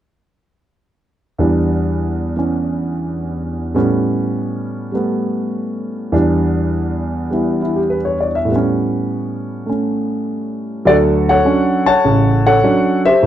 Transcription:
1.38 E2 E3 G3 D4
2.37 E3 C#4
3.75 A2 G3 B3 C#4
4.92 G3 A3 B3
6.12 E2 E3 G3 D4
7.30 G3 B3 E4
7.62 E4
7.76 G4
7.90 B4
8.05 C#5
8.21 D5
8.35 E5
8.45 A2 G3
8.52 B3 C#4
9.66 A3 C#4
10.85 D2 F#3 F#4 A4 D5
11.29 A4 C#5 F#5
11.45 F#3 C#4 D4
11.86 C#5 F#5 A5
12.04 A1 C#3
12.47 A4 C#5 F#5
12.64 F#3 C#4 D4
13.06 G4 C5 E5
13.22 A1 A2

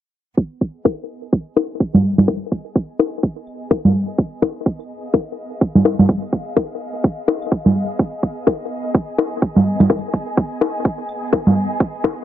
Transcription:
0.37 B3, kick
0.61 kick
0.70 G#4
0.80 D#5
0.85 kick, low bongo, claves
1.27 G#5
1.33 kick
1.56 low bongo
1.80 kick
1.94 low conga
2.18 low conga, claves
2.28 kick, low bongo
2.52 kick
2.76 kick
2.99 low bongo
3.23 kick
3.47 claves
3.71 kick, low bongo
3.85 low conga
4.18 kick
4.42 kick, low bongo
4.66 kick
4.80 claves
5.08 F5
5.14 kick, low bongo
5.61 kick
5.75 low conga
5.85 low bongo
5.99 low conga
6.09 kick, claves
6.33 kick
6.56 kick, low bongo
7.04 kick
7.28 low bongo
7.42 claves
7.52 kick
7.66 low conga
7.99 kick
8.23 kick
8.47 kick, low bongo, claves
8.89 G#5
8.95 kick
9.18 low bongo
9.42 kick
9.56 low conga
9.80 low conga, claves
9.90 kick, low bongo
10.14 kick
10.37 kick
10.61 low bongo
10.85 kick
11.09 claves
11.33 kick, low bongo
11.47 low conga
11.80 kick
12.04 kick, low bongo

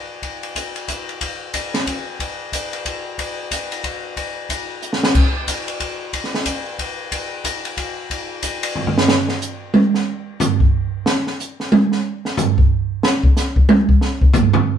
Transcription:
0.22 kick, ride
0.43 ride
0.55 kick, hi-hat pedal, ride
0.76 ride
0.88 kick, hi-hat pedal, ride
1.09 ride
1.21 kick, ride
1.54 kick, hi-hat pedal, ride
1.74 snare, ride
1.87 kick, ride
2.20 kick, ride
2.52 kick, hi-hat pedal, ride
2.73 ride
2.85 kick, ride
3.18 kick, ride
3.51 kick, hi-hat pedal, ride
3.72 ride
3.84 kick, ride
4.17 kick, ride
4.49 kick, hi-hat pedal, ride
4.82 hi-hat pedal
4.93 snare
5.03 snare
5.15 kick, crash
5.48 kick, hi-hat pedal, ride
5.68 ride
5.80 kick, ride
6.13 kick, ride
6.24 snare
6.34 snare
6.46 kick, hi-hat pedal, ride
6.79 kick, ride
7.12 kick, ride
7.44 kick, hi-hat pedal, ride
7.65 ride
7.77 kick, ride
8.10 kick, ride
8.43 kick, hi-hat pedal, ride
8.63 ride
8.75 floor tom
8.87 floor tom
8.98 snare
9.08 snare
9.29 snare
9.42 hi-hat pedal
9.74 high tom
9.94 snare
10.40 floor tom, hi-hat pedal
10.60 kick
11.06 snare
11.27 snare
11.40 hi-hat pedal
11.60 snare
11.72 high tom
11.92 snare
12.25 snare
12.37 floor tom, hi-hat pedal
12.58 kick
13.03 snare
13.23 kick
13.37 snare, hi-hat pedal
13.56 kick
13.69 high tom
13.89 kick
14.01 snare
14.21 kick
14.34 floor tom, hi-hat pedal
14.53 floor tom

